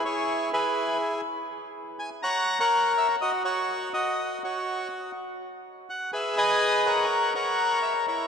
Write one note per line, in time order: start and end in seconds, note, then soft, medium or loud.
0.05 0.52 E4 medium
0.05 0.51 G#4 medium
0.05 0.49 C#5 medium
0.53 1.21 E4 medium
0.53 1.21 G#4 medium
0.53 0.98 B4 medium
1.99 2.10 G#5 medium
2.23 2.59 C#5 medium
2.23 2.58 F#5 medium
2.23 2.59 A#5 medium
2.60 3.16 A#4 medium
2.60 3.16 C#5 medium
2.60 2.93 F#5 medium
2.98 3.08 E5 medium
3.21 3.43 F#4 medium
3.21 3.31 D#5 medium
3.45 3.92 F#4 medium
3.45 3.89 C#5 medium
3.94 4.42 F#4 medium
3.94 4.38 D#5 medium
4.44 5.11 F#4 medium
4.44 4.88 C#5 medium
5.90 6.11 F#5 medium
6.13 7.05 G#4 medium
6.13 6.35 B4 medium
6.13 6.38 E5 medium
6.37 7.05 B4 medium
6.37 7.05 D#5 medium
6.37 6.82 G#5 loud
6.86 7.34 A#4 medium
6.86 7.33 C#5 medium
6.86 7.30 F#5 medium
7.35 8.06 A#4 medium
7.35 8.06 C#5 medium
7.35 7.79 F#5 medium
7.83 7.93 E5 medium
8.07 8.27 E4 soft
8.07 8.27 A#4 soft
8.07 8.27 C#5 medium